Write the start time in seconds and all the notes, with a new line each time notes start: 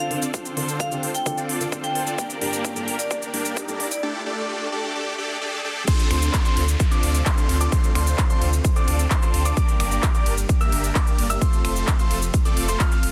Already playing: D3 C4 D4 F4 A4 C5, riser
0.00 F5
0.10 D3 C4 D4 F4 A4, open hi-hat
0.22 C4 D4 F4 A4 D5, closed hi-hat, shaker
0.34 C4 D4 F4 C5, kick, closed hi-hat, shaker
0.45 closed hi-hat, shaker
0.56 D3 C4 D4 F4 A4 C5, open hi-hat
0.68 closed hi-hat, shaker
0.80 F5, kick, closed hi-hat, shaker
0.91 D3 C4 D4 F4 G4 A4 C5, closed hi-hat, shaker
1.03 open hi-hat
1.15 G5, closed hi-hat, shaker
1.26 D3 C4 D4 F4 A4, kick, closed hi-hat, shaker
1.38 C4 D4 F4 A4 D5, closed hi-hat, shaker
1.49 open hi-hat
1.60 D3 C4 D4 F4 A4, closed hi-hat, shaker
1.72 C4 D4 F4 A4 C5, kick, closed hi-hat, shaker
1.84 G5, closed hi-hat, shaker
1.95 C4 D4 F4 A4, open hi-hat
2.07 C4 D4 F4 A4 D5, closed hi-hat, shaker
2.18 A#3 D4 G4 A#4 D5, kick, closed hi-hat, shaker
2.30 closed hi-hat, shaker
2.41 G2 A#3 D4 G4 A#4 D5, open hi-hat
2.53 closed hi-hat, shaker
2.65 kick, closed hi-hat, shaker
2.75 G2 A#3 D4 G4 A4 A#4 D5, closed hi-hat, shaker
2.88 open hi-hat
2.99 D5, closed hi-hat, shaker
3.11 A#3 D4 G4 A#4 D5, kick, closed hi-hat, shaker
3.22 closed hi-hat, shaker
3.33 G2 A#3 D4 G4 A#4 D5, open hi-hat
3.45 closed hi-hat, shaker
3.57 kick, closed hi-hat, shaker
3.68 G2 A#3 D4 G4 A4 A#4 D5, closed hi-hat, shaker
3.80 open hi-hat
3.91 D5, closed hi-hat, shaker
4.03 A3 D4 G4 A4 D5
4.26 A3 D4 G4 A4 D5
4.49 A3 D4 G4 A4 D5
4.72 A3 D4 G4 A4 D5
4.95 A3 D4 G4 A4 D5
5.18 A3 D4 G4 A4 D5
5.41 A3 D4 G4 A4 D5
5.65 A3 D4 G4 A4 D5
5.88 C3 A3 C4 D4 F4 A4 C5 C6, kick, closed hi-hat, crash, ride, downlifter, shaker
5.99 closed hi-hat, shaker
6.11 D2 C4 D4 F4 A4 C5 C6, finger snap, open hi-hat, ride
6.22 closed hi-hat, shaker
6.33 kick, clap, closed hi-hat, ride, shaker
6.45 C4 D4 F4 A4 C5 C6, closed hi-hat, shaker
6.57 D2, open hi-hat, ride
6.68 closed hi-hat, shaker
6.80 kick, closed hi-hat, ride, shaker
6.91 C4 D4 F4 A4 D5 D6, closed hi-hat, shaker
7.03 D2, open hi-hat, ride
7.15 closed hi-hat, shaker
7.26 C4 D4 F4 A4 C5 C6, kick, clap, closed hi-hat, ride, shaker
7.38 closed hi-hat, shaker
7.49 D2, open hi-hat, ride
7.61 C4 D4 F4 A4 D5 D6, closed hi-hat, shaker
7.72 C4 D4 F4 A4 C5 C6, kick, closed hi-hat, ride, shaker
7.84 closed hi-hat, shaker
7.95 D2 C4 D4 F4 A4 C5 C6, finger snap, open hi-hat, ride
8.07 closed hi-hat, shaker
8.18 kick, clap, closed hi-hat, ride, shaker
8.30 C4 D4 F4 A4 C5 C6, closed hi-hat, shaker
8.42 D2, open hi-hat, ride
8.53 closed hi-hat, shaker
8.65 kick, closed hi-hat, ride, shaker
8.76 C4 D4 F4 A4 D5 D6, closed hi-hat, shaker
8.88 D2, open hi-hat, ride
8.99 closed hi-hat, shaker
9.11 C4 C5 C6, kick, clap, closed hi-hat, ride, shaker
9.22 clap, closed hi-hat, shaker
9.34 D2, open hi-hat, ride
9.45 C4 D4 F4 A4 D5 D6, closed hi-hat, shaker
9.57 D3 G3 A#3 D4 G4 A#4 D5 D6, kick, closed hi-hat, ride, shaker
9.68 closed hi-hat, shaker
9.80 G1 A#3 D4 G4 A#4 D5 D6, finger snap, open hi-hat, ride
9.92 closed hi-hat, shaker
10.03 kick, clap, closed hi-hat, ride, shaker
10.15 A#3 D4 G4 A#4 D5 D6, closed hi-hat, shaker
10.26 G1, open hi-hat, ride
10.38 closed hi-hat, shaker
10.49 kick, closed hi-hat, ride, shaker
10.61 A#3 D4 G4 A#4 E5 E6, closed hi-hat, shaker
10.72 G1, open hi-hat, ride
10.84 closed hi-hat, shaker
10.95 A#3 D4 G4 A#4 D6, kick, clap, closed hi-hat, ride, shaker
11.07 closed hi-hat, shaker
11.18 G1, open hi-hat, ride
11.30 A#3 D4 G4 A#4 E5 E6, closed hi-hat, shaker
11.41 C3 F3 A3 C4 F4 C5 C6, kick, closed hi-hat, ride, shaker
11.53 closed hi-hat, shaker
11.65 F1 A3 C4 F4 A4 C5 C6, finger snap, open hi-hat, ride
11.76 closed hi-hat, shaker
11.87 kick, clap, closed hi-hat, ride, shaker
11.99 A3 C4 F4 A4 C5 C6, closed hi-hat, shaker
12.11 F1, open hi-hat, ride
12.22 closed hi-hat, shaker
12.34 kick, closed hi-hat, ride, shaker
12.45 A3 C4 F4 A4 D5 D6, closed hi-hat, shaker
12.57 F1, open hi-hat, ride
12.68 A3 C4 F4 A4 C5 C6, closed hi-hat, shaker
12.80 F4 F6, kick, clap, closed hi-hat, ride, shaker
12.91 clap, closed hi-hat, shaker
13.03 F1, open hi-hat, ride